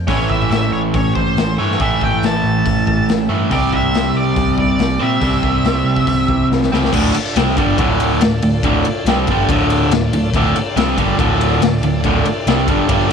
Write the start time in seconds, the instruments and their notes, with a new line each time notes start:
0.08 picked electric bass A1, overdriven electric guitar A2 E3 A3, tonewheel organ D4 F4 A#4 D5, lead electric guitar C#5, kick, open hi-hat
0.22 tonewheel organ C#4 E4 A4 E5
0.29 picked electric bass A1, lead electric guitar E5, kick
0.51 picked electric bass A1, lead electric guitar E5, snare, open hi-hat
0.72 picked electric bass A1, lead electric guitar C#5
0.94 picked electric bass A1, lead electric guitar C#5, kick, open hi-hat
1.15 picked electric bass A1, lead electric guitar C5, kick
1.37 picked electric bass A1, snare, open hi-hat
1.58 picked electric bass G2, overdriven electric guitar A2 E3 A3, lead electric guitar C#5
1.71 snare
1.79 picked electric bass A1, overdriven electric guitar A2 E3 A3, lead electric guitar E5, kick, open hi-hat
2.01 picked electric bass A1, lead electric guitar G5, kick
2.23 picked electric bass A1, lead electric guitar A5, snare, open hi-hat
2.44 picked electric bass A1
2.65 picked electric bass A1, kick, open hi-hat
2.87 picked electric bass A1, kick
3.08 picked electric bass A1, snare, open hi-hat
3.29 picked electric bass G2, overdriven electric guitar A2 E3 A3
3.50 picked electric bass C2, overdriven electric guitar C3 G3 C4, tonewheel organ C4 E4 G4 C5, lead electric guitar D5, kick, open hi-hat
3.72 picked electric bass C2, lead electric guitar E5, kick
3.94 picked electric bass C2, snare, open hi-hat
4.14 picked electric bass C2, lead electric guitar D5
4.36 picked electric bass C2, kick, open hi-hat
4.57 picked electric bass C2, lead electric guitar D5, kick
4.79 picked electric bass C2, snare, open hi-hat
5.00 picked electric bass A#2, overdriven electric guitar C3 G3 C4, lead electric guitar E5
5.21 picked electric bass C2, overdriven electric guitar C3 G3 C4, kick, open hi-hat
5.43 picked electric bass C2, kick
5.64 picked electric bass C2, snare, open hi-hat
5.85 picked electric bass C2
5.96 kick
6.07 picked electric bass C2, kick, open hi-hat
6.28 picked electric bass C2, kick
6.50 picked electric bass C2, snare
6.63 snare
6.72 picked electric bass C#2, overdriven electric guitar C3 G3 C4, snare
6.84 snare
6.92 picked electric bass D1, overdriven electric guitar D2 A2 D3, tonewheel organ D4 F4 A4 D5, kick, crash
7.14 muted picked electric bass stroke, muted overdriven electric guitar stroke, ride
7.36 picked electric bass C2, overdriven electric guitar C3 G3 C4, snare, ride
7.48 snare
7.57 picked electric bass G1, overdriven electric guitar G2 D3 G3, kick, ride
7.78 picked electric bass D1, overdriven electric guitar D2 A2 D3, kick, ride
8.00 ride
8.21 picked electric bass D1, overdriven electric guitar D2 A2, snare, ride
8.42 picked electric bass D1, overdriven electric guitar D2 A2, ride
8.63 picked electric bass D1, overdriven electric guitar D2 A2 D3, kick, ride
8.85 muted picked electric bass stroke, muted overdriven electric guitar stroke, ride
9.05 picked electric bass C2, overdriven electric guitar C3 G3 C4, snare, ride
9.27 picked electric bass G1, overdriven electric guitar G2, kick, ride
9.31 overdriven electric guitar D3 G3
9.49 picked electric bass D1, overdriven electric guitar D2 A2 D3, kick, ride
9.70 ride
9.91 picked electric bass D1, overdriven electric guitar D2 A2, snare, ride
10.12 picked electric bass D1, overdriven electric guitar D2 A2, ride
10.33 picked electric bass D1, overdriven electric guitar D2 A2 D3, tonewheel organ D4 F4 A4 D5, kick, ride
10.55 muted picked electric bass stroke, muted overdriven electric guitar stroke, ride
10.76 picked electric bass C2, overdriven electric guitar C3 G3 C4, snare, ride
10.98 picked electric bass G1, overdriven electric guitar G2 D3 G3, kick, ride
11.18 picked electric bass D1, overdriven electric guitar D2 A2 D3, kick, ride
11.41 ride
11.61 picked electric bass D1, overdriven electric guitar D2 A2, snare, ride
11.82 picked electric bass D1, overdriven electric guitar D2 A2, ride
12.03 picked electric bass D1, overdriven electric guitar D2 A2 D3, kick, ride
12.25 muted picked electric bass stroke, muted overdriven electric guitar stroke, ride
12.47 picked electric bass C2, overdriven electric guitar C3 G3 C4, snare, ride
12.68 picked electric bass G1, overdriven electric guitar G2 D3 G3, kick, ride
12.89 picked electric bass G1, overdriven electric guitar G2 D3 G3, kick, ride
13.10 overdriven electric guitar D2